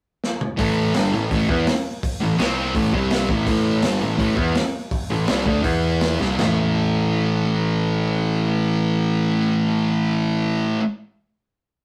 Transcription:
0.24 snare
0.41 mid tom
0.57 picked electric bass A1, distorted electric guitar A2 E3 A3, kick, open hi-hat
0.94 picked electric bass G1, distorted electric guitar G2 D3 G3, snare, open hi-hat
1.12 picked electric bass A1, distorted electric guitar A2 E3
1.31 picked electric bass A1, distorted electric guitar A2 E3 A3, kick, open hi-hat
1.49 picked electric bass E2, distorted electric guitar E3 B3 E4, kick
1.67 snare, open hi-hat
2.03 kick, open hi-hat
2.20 picked electric bass A1, distorted electric guitar A2 E3
2.38 picked electric bass C2, distorted electric guitar C3 G3 C4, snare, open hi-hat
2.75 picked electric bass A1, distorted electric guitar A2 E3 A3, kick, open hi-hat
2.93 picked electric bass C2, distorted electric guitar C3 G3 C4, kick
3.11 snare, open hi-hat
3.29 picked electric bass A1, distorted electric guitar A2 E3 A3, kick
3.46 picked electric bass A1, distorted electric guitar A2 E3 A3, kick, open hi-hat
3.82 picked electric bass G1, distorted electric guitar G2 D3 G3, snare, open hi-hat
4.02 picked electric bass A1, distorted electric guitar A2 E3
4.17 picked electric bass A1, distorted electric guitar A2 E3 A3, kick, open hi-hat
4.36 picked electric bass E2, distorted electric guitar E3 B3 E4, kick
4.55 snare, open hi-hat
4.91 kick, open hi-hat
5.10 picked electric bass A1, distorted electric guitar A2 E3
5.27 picked electric bass C2, distorted electric guitar C3 G3 C4, snare, open hi-hat
5.45 picked electric bass D2, distorted electric guitar D3 A3 D4, kick
5.62 picked electric bass E2, distorted electric guitar E3 B3 E4, kick, open hi-hat
6.01 snare, open hi-hat
6.19 picked electric bass C2, distorted electric guitar C3 G3 C4, snare
6.37 picked electric bass A1, distorted electric guitar A2 E3 A3, snare, floor tom, splash

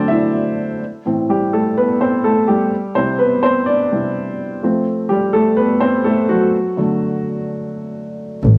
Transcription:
Already playing: upright piano D3 F#3 A3 C4 D4 A4 C5 D5
0.08 upright piano E4 E5
1.06 upright piano A2 E3 C4
1.30 upright piano G3 G4
1.53 upright piano A3 A4
1.78 upright piano B3 B4
2.01 upright piano C4 C5
2.24 upright piano A3 A4
2.48 upright piano G3 G4
2.95 upright piano C3 G3 C4 E4 C5
3.19 upright piano B3 B4
3.43 upright piano C4 C5
3.66 upright piano D4 D5
3.91 upright piano C3 G3 E4
4.63 upright piano F3 A3 C4
5.09 upright piano G3 G4
5.33 upright piano A3 A4
5.57 upright piano B3 B4
5.80 upright piano C4 C5
6.04 upright piano A3 A4
6.29 upright piano F#3 F#4
6.77 upright piano D3 F#3 A3
8.44 double bass A1

